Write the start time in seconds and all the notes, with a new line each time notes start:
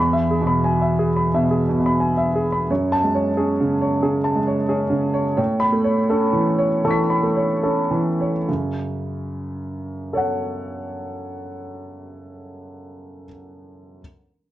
Already playing: E2 B5
0.13 E5
0.31 G#4
0.41 B2
0.47 B5
0.64 G#5
0.82 E5
0.99 G#4
1.17 B5
1.34 B2 E5
1.51 G#4
1.69 B2
1.80 B2
1.86 B5
2.00 G#5
2.17 E5
2.35 G#4
2.53 B5
2.70 F#2 C#5
2.92 A5
3.04 G#3
3.15 C#5
3.37 C#4 G#4
3.60 C#3
3.81 C#5
4.02 C#3 G#4
4.24 A5
4.35 G#3
4.47 C#5
4.68 C#4 G#4
4.90 C#3
5.14 C#5
5.37 A2 C#5
5.60 B5
5.72 A3
5.84 C#5
6.09 C#4 A4
6.33 E3
6.58 C#5
6.84 E3 A4 A5 C#6
6.91 B6
7.10 B5
7.23 A3
7.36 C#5
7.63 C#4 A4
7.91 E3
8.21 C#5
8.48 F#2 C#3
10.13 A4 C#5
10.17 F#5